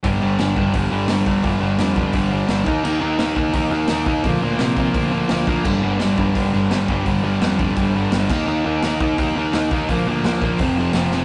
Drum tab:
CC |--------|--------|x-------|--------|
HH |o-o-o-o-|o-o-o-o-|--o-o-o-|o-o-o-o-|
SD |--o---o-|--o---o-|--o---o-|--o---o-|
BD |o--oo--o|o--oo--o|---oo--o|o--oo--o|

CC |x-------|-------x|--------|--------|
HH |--o-o-o-|o-o-o-o-|--o-o-o-|o-o-o-o-|
SD |--o---o-|--o---o-|--o---o-|--o---oo|
BD |o--oo--o|o--oo--o|---oo--o|o--oo---|